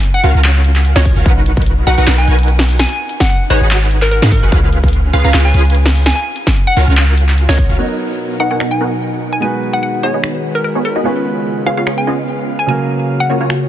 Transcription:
0.03 closed hi-hat
0.14 F#5
0.24 C#2 C#4 F4 F#4 A#4 F5, closed hi-hat
0.34 C#2 C#4 F4 F#4 A#4 F5
0.44 clap, closed hi-hat
0.64 closed hi-hat
0.75 clap, closed hi-hat
0.80 closed hi-hat
0.85 closed hi-hat
0.96 C#2 C#4 F4 F#4 A#4 C#5 D#5, snare
1.05 kick, open hi-hat
1.16 C#2 C#4 F4 F#4 A#4 F5
1.26 B1 D#4 F#4 A#4 B4 F#5, kick, closed hi-hat
1.46 closed hi-hat
1.57 kick, closed hi-hat
1.62 closed hi-hat
1.66 closed hi-hat
1.87 B1 D#4 F#4 A#4 B4 F#5, closed hi-hat
1.98 B1 D#4 F#4 A#4 B4 F#5 A#5
2.07 B1 D#4 F#4 A#4 B4 F#5, clap, snare, closed hi-hat
2.18 G#5
2.28 B1 D#4 F#4 A#4 B4 G#5, closed hi-hat
2.39 closed hi-hat
2.43 closed hi-hat
2.48 closed hi-hat
2.59 snare
2.68 open hi-hat
2.79 G#5, snare
2.89 G#5, closed hi-hat
3.09 closed hi-hat
3.20 F#5, kick, snare, closed hi-hat
3.25 closed hi-hat
3.30 F#5, closed hi-hat
3.50 G#1 D#4 F#4 G#4 B4 C#5 F#5, closed hi-hat
3.61 G#1 D#4 F#4 G#4 B4 F#5
3.71 clap, closed hi-hat
3.91 closed hi-hat
4.02 A#4, clap, closed hi-hat
4.07 closed hi-hat
4.11 A#4, closed hi-hat
4.22 G#2 D#4 F#4 G#4 B4 F5, snare
4.32 A#4, kick, open hi-hat
4.43 G#1 D#4 F#4 G#4 B4 F#5
4.52 C#2 C#4 F4 G#4 B4 F5, kick, closed hi-hat
4.73 closed hi-hat
4.84 kick, closed hi-hat
4.88 closed hi-hat
4.93 closed hi-hat
5.13 C#2 C#4 F4 G#4 B4 F5, closed hi-hat
5.24 C#2 C#4 F4 G#4 B4 F5 A#5
5.34 C#2 C#4 F4 G#4 B4 F5, clap, snare, closed hi-hat
5.45 G#5
5.54 C#2 C#4 F4 G#4 B4 G#5, closed hi-hat
5.65 closed hi-hat
5.70 closed hi-hat
5.75 closed hi-hat
5.86 snare
5.95 open hi-hat
6.06 G#5, snare
6.15 G#5, closed hi-hat
6.36 closed hi-hat
6.47 kick, snare, closed hi-hat
6.52 closed hi-hat
6.56 closed hi-hat
6.67 F#5
6.77 C#2 C#4 F4 F#4 A#4 F5, closed hi-hat
6.88 C#2 C#4 F4 F#4 A#4 F5
6.97 clap, closed hi-hat
7.18 closed hi-hat
7.28 clap, closed hi-hat
7.33 closed hi-hat
7.38 closed hi-hat
7.49 C#2 C#4 F4 F#4 A#4 C#5 D#5, snare
7.58 kick, open hi-hat
7.69 C#2 C#4 F4 F#4 A#4 F5
7.77 B2 F#3 B3 D#4 F#4 A#4 D#5
7.81 A#4
8.40 B3 D#4 F#4 A#4 D#5 F#5
8.51 B3 D#4 F#4 A#4 F#5 G#5
8.60 B3 D#4 F#4 A#4 D#5, finger snap
8.71 G#5
8.81 B3 D#4 F#4 A#4 F#5
9.33 G#5
9.40 D#3 G#3 B3 D#4 F#4 B4 G#5
9.73 F#5
9.83 F#5
10.03 B3 D#4 F#4 G#4 C#5 D#5
10.14 B3 D#4 F#4 G#4 D#5
10.24 finger snap
10.55 A#4
10.64 A#4
10.75 B3 D#4 F#4 G#4 C#5
10.85 A#4
10.96 B3 D#4 F#4 G#4 D#5
11.03 C#3 G#3 B3 C#4 F4 G#4 C#5 F5
11.07 B4
11.66 B3 C#4 F4 G#4 C#5 F5
11.77 B3 C#4 F4 G#4 F5
11.87 B3 C#4 F4 G#4 C#5, finger snap
11.98 G#5
12.07 B3 C#4 F4 G#4 D#5
12.59 G#5
12.67 C#3 F#3 A#3 C#4 A#4 F5 G#5
13.20 F#5
13.30 C#3 A#3 C#4 F4 F#4 C#5
13.41 C#3 A#3 C#4 F4 F#4 C#5
13.50 finger snap

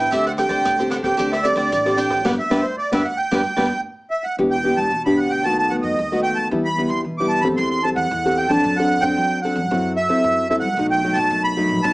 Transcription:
Already playing: B4 G5
0.00 C5
0.11 D2 D3 C4 D4 G4 A4 C5 D5 E5, kick, cross-stick, closed hi-hat
0.26 G4 C5 D5 F#5, closed hi-hat
0.37 C4 G4 A4 G5, muted cavaquinho stroke, cross-stick, closed hi-hat
0.49 D2 G4 C5 D5, kick, closed hi-hat
0.65 D2 A2, kick, cross-stick, closed hi-hat
0.78 C4 G4 A4 C5 D5, closed hi-hat
0.90 D4 G4 C5 D5 F#5, cross-stick, closed hi-hat
1.02 D2 C4 G4 A4 G5, kick, cross-stick
1.17 D2 D3 C4 D4 G4 A4 C5 D5, kick, closed hi-hat
1.32 G4 C5 D5 E5, cross-stick, closed hi-hat
1.43 C4 G4 A4 D5, muted cavaquinho stroke, closed hi-hat
1.56 D2 G4 C5 D5, kick, cross-stick
1.72 A1 A2, kick, closed hi-hat
1.85 C4 G4 A4 C5 D5, cross-stick
1.97 D4 G4 C5 D5 G5, closed hi-hat
2.10 G4 C5 D5, kick, cross-stick
2.25 G1 G3 B3 D4 G4 B4 D5 F#5, kick, snare
2.39 E5
2.50 G1 G3 B3 D4 G4 B4 D5, kick, snare
2.62 C5
2.78 D5
2.91 G1 G3 B3 D4 G4 B4 D5 E5, kick, snare
3.04 F#5
3.17 G5
3.31 G1 G3 B3 D4 G4 B4 D5, kick, snare
3.57 G1 G3 B3 D4 G4 B4 D5, kick, snare
4.10 E5
4.24 F#5
4.38 E1 E3 B3 D4 G4
4.51 G5
4.64 B3 D4 G4
4.77 E1 A5
4.92 E2 B2
5.05 B3 D4 G4 B5
5.17 F#5
5.30 D2 G5
5.44 D#2 D#3 A3 B3 F#4 A5
5.58 A5
5.70 A3 B3 F#4 F#5
5.82 F#2 D#5
5.99 D#2 D#3
6.12 A3 B3 F#4
6.23 G5
6.35 D#2 A5
6.51 E2 E3 G3 B3 E4
6.65 B5
6.78 G3 B3 E4
6.89 E2 C6
7.04 B2 E3
7.18 G3 B3 E4 D6
7.28 A5
7.41 E2 C4 G4 A4 B5
7.57 E2 E3 C6
7.70 C6
7.83 C4 G4 A4 A5
7.96 E2 F#5
8.11 E2 E3
8.25 C4 G4 A4
8.37 G5
8.49 F2 C4 D4 A4 A5
8.64 F#2 F#3
8.77 C4 D4 A4 F#5
9.01 F#2 C4 D4 A4 G5
9.17 F#3
9.42 C4 D4 A4 F#5
9.55 F#2
9.71 F#2 F#3 C4 E4 A4
9.96 E5
10.09 C3 C4 E4 A4
10.24 F#2 F#3
10.50 C4 E4 A4 E5
10.60 C2 F#5
10.77 B1 B2 F#3 A3 D#4
10.90 G5
11.04 F#3 A3 D#4
11.13 B1 A5
11.31 F#2 B2
11.44 B5
11.57 F#3 A3 D#4
11.69 B1
11.83 B1 B2 F#3 A3 D#4 A5

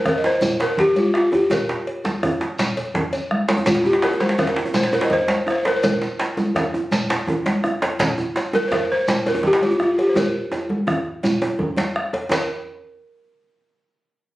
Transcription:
0.05 A#4, bombo rim, bombo low, cowbell, djembe slap, high conga, djembe bass, low conga, shekere
0.18 D#5
0.24 C5, djembe slap
0.41 cowbell, djembe slap, high conga, djembe bass, shekere
0.60 A#4, cowbell, djembe slap, djembe tone, shekere
0.77 G4, bombo rim, bombo low, djembe slap, high conga, low conga, djembe bass
0.96 F4, bombo rim, cowbell, high conga, shekere
1.14 F4, bombo rim, djembe slap
1.32 G4, cowbell, djembe slap, djembe tone, djembe bass
1.50 A#4, bombo low, cowbell, djembe slap, high conga, low conga, djembe bass, shekere
1.69 bombo rim, djembe slap, high conga
1.87 cowbell
2.05 djembe slap, djembe tone, high conga, shekere
2.23 bombo rim, bombo low, cowbell, djembe slap, djembe bass, low conga
2.41 bombo rim, djembe slap, high conga
2.59 cowbell, djembe slap, high conga, shekere
2.77 cowbell, djembe slap, djembe tone, shekere
2.94 bombo low, djembe slap, djembe bass, low conga
3.13 cowbell, djembe slap, low conga, shekere
3.31 bombo rim, high conga
3.48 cowbell, djembe slap, djembe tone, high conga, shekere
3.57 djembe tone
3.66 F4, bombo rim, bombo low, cowbell, djembe slap, high conga, djembe bass, low conga, shekere
3.75 djembe slap
3.84 G4, djembe slap, djembe tone, high conga, shekere
3.93 djembe slap
4.02 A#4, cowbell, djembe slap, high conga, shekere
4.11 djembe tone
4.20 C5, djembe slap, djembe tone, high conga, shekere
4.29 djembe slap
4.38 A#4, bombo rim, bombo low, cowbell, djembe slap, high conga, djembe tone, low conga, djembe bass, shekere
4.47 djembe slap
4.56 djembe slap
4.65 djembe tone
4.74 C5, cowbell, djembe slap, high conga, shekere
4.83 djembe slap
4.87 C5
4.92 A#4, cowbell, djembe slap, djembe tone, shekere
5.01 D#5, djembe slap
5.10 C5, bombo rim, bombo low, djembe slap, high conga, low conga, djembe bass
5.28 bombo rim, cowbell, djembe slap, high conga, shekere
5.47 C5, bombo rim, djembe tone
5.65 A#4, cowbell, djembe slap, djembe tone
5.76 C5
5.83 A#4, bombo rim, bombo low, cowbell, high conga, djembe tone, low conga, djembe bass, shekere
6.01 djembe slap, high conga, shekere
6.19 cowbell, djembe slap, high conga, shekere
6.37 djembe slap, djembe tone, high conga, shekere
6.55 bombo rim, bombo low, cowbell, djembe slap, high conga, djembe bass, low conga, shekere
6.74 djembe tone
6.91 cowbell, djembe slap, high conga, shekere
7.10 cowbell, djembe slap, djembe tone, shekere
7.27 bombo rim, bombo low, djembe slap, high conga, djembe tone, djembe bass, low conga
7.46 bombo rim, cowbell, djembe slap, high conga, shekere
7.64 bombo rim, djembe slap, djembe tone
7.82 cowbell, djembe slap, djembe tone
7.99 bombo low, cowbell, djembe slap, high conga, low conga, djembe bass, shekere
8.18 djembe slap, djembe tone, high conga, shekere
8.36 cowbell, djembe slap, high conga, shekere
8.53 A#4, djembe slap, djembe tone, high conga, shekere
8.68 C5, djembe slap, high conga, djembe bass, low conga
8.72 A#4, bombo rim, bombo low, cowbell, shekere
8.92 C5
9.08 cowbell, djembe slap, high conga, shekere
9.26 A#4, cowbell, djembe slap, djembe tone, shekere
9.35 djembe tone
9.43 G4, bombo rim, bombo low, djembe slap, high conga, low conga, djembe bass
9.53 djembe slap
9.61 F4, bombo rim, cowbell, high conga, shekere
9.70 djembe tone
9.80 F4, bombo rim, djembe tone
9.98 G4, cowbell, djembe slap, djembe tone
10.09 C5
10.15 A#4, bombo rim, bombo low, cowbell, djembe slap, high conga, djembe tone, low conga, djembe bass, shekere
10.35 djembe slap
10.52 bombo rim, cowbell, djembe tone, shekere
10.69 djembe slap, high conga, djembe tone
10.87 bombo rim, bombo low, djembe slap, high conga, djembe tone, low conga, djembe bass
11.23 cowbell, high conga, djembe tone, shekere
11.42 bombo rim, cowbell, djembe slap, djembe tone
11.59 bombo low, djembe bass, low conga
11.76 cowbell, djembe slap, high conga, shekere
11.95 bombo rim, high conga
12.13 cowbell, djembe slap, djembe tone
12.30 A#4, bombo low, cowbell, djembe slap, low conga, djembe bass, shekere

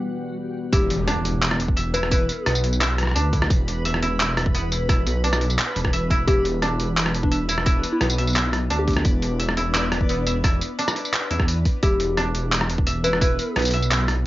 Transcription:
Already playing: E3 G3 B3 F#4 B4 D5
0.72 E1 B3 E4 G4 B4, kick, closed hi-hat, impact
0.90 closed hi-hat
1.07 D4, cross-stick, closed hi-hat
1.25 E1, closed hi-hat
1.42 clap, tambourine
1.51 cross-stick
1.60 closed hi-hat
1.68 kick
1.77 E5, closed hi-hat
1.94 E4 B4, closed hi-hat, tambourine
2.03 B4, cross-stick
2.11 E4 B4, kick, closed hi-hat, tambourine
2.29 closed hi-hat, tambourine
2.46 B1 B3, cross-stick, closed hi-hat
2.55 tambourine
2.64 closed hi-hat
2.73 tambourine
2.81 E4, clap, closed hi-hat
2.98 cross-stick, closed hi-hat
3.03 cross-stick
3.07 cross-stick
3.11 cross-stick
3.15 D2 D4, closed hi-hat
3.33 kick, closed hi-hat
3.42 cross-stick
3.50 E1, kick, closed hi-hat
3.68 closed hi-hat
3.85 E5, closed hi-hat
3.94 cross-stick
4.02 E1 E4, closed hi-hat
4.20 E4, clap, closed hi-hat, tambourine
4.37 cross-stick, closed hi-hat
4.46 kick
4.55 B3, closed hi-hat
4.72 closed hi-hat, tambourine
4.89 E4, kick, cross-stick, closed hi-hat, tambourine
5.06 B1, closed hi-hat, tambourine
5.24 D4, closed hi-hat
5.33 cross-stick, tambourine
5.41 closed hi-hat
5.50 tambourine
5.58 clap, closed hi-hat
5.76 E1, closed hi-hat
5.85 kick, cross-stick
5.93 E5, closed hi-hat
6.10 E4, kick, closed hi-hat
6.27 E1 D4 E4 G4, kick, closed hi-hat
6.45 closed hi-hat
6.62 D4, cross-stick, closed hi-hat
6.80 E1, closed hi-hat
6.97 clap, closed hi-hat, tambourine
7.06 cross-stick
7.14 closed hi-hat
7.23 D4, kick
7.31 D4 E5, closed hi-hat
7.49 E4, closed hi-hat, tambourine
7.58 cross-stick
7.66 E4, kick, closed hi-hat, tambourine
7.83 closed hi-hat, tambourine
7.93 E4
8.01 B1 B3, cross-stick, closed hi-hat
8.10 tambourine
8.18 E5, closed hi-hat
8.27 tambourine
8.30 tambourine
8.33 E4, clap, closed hi-hat, tambourine
8.53 cross-stick, closed hi-hat
8.70 D2 D4, closed hi-hat
8.79 G4
8.88 G4, kick, closed hi-hat
8.90 closed hi-hat
8.93 cross-stick, closed hi-hat
9.05 E1, kick, closed hi-hat
9.22 closed hi-hat
9.40 E5, closed hi-hat
9.49 cross-stick
9.57 E1 E4, closed hi-hat
9.74 E4, clap, closed hi-hat, tambourine
9.92 cross-stick, closed hi-hat
10.01 kick
10.09 B3, closed hi-hat
10.27 E5, closed hi-hat, tambourine
10.44 E4, kick, cross-stick, closed hi-hat, tambourine
10.61 closed hi-hat, tambourine
10.79 D4, closed hi-hat
10.88 cross-stick, tambourine
10.96 closed hi-hat
11.05 tambourine
11.13 clap, closed hi-hat
11.31 E2 E4, closed hi-hat
11.40 kick, cross-stick
11.48 closed hi-hat
11.65 kick, closed hi-hat
11.83 E1 B3 E4 G4 B4, kick, closed hi-hat
12.00 closed hi-hat
12.17 D4, cross-stick, closed hi-hat
12.35 E1, closed hi-hat
12.52 clap, closed hi-hat, tambourine
12.61 cross-stick
12.70 closed hi-hat
12.78 kick
12.87 E5, closed hi-hat
13.04 E4 B4, closed hi-hat, tambourine
13.13 cross-stick
13.21 E4 B4, kick, closed hi-hat, tambourine
13.39 closed hi-hat, tambourine
13.56 B1 B3, cross-stick, closed hi-hat
13.59 closed hi-hat
13.62 closed hi-hat
13.65 closed hi-hat, tambourine
13.68 closed hi-hat
13.71 E5, closed hi-hat
13.74 closed hi-hat
13.83 tambourine
13.91 E4, clap, closed hi-hat
14.08 cross-stick, closed hi-hat

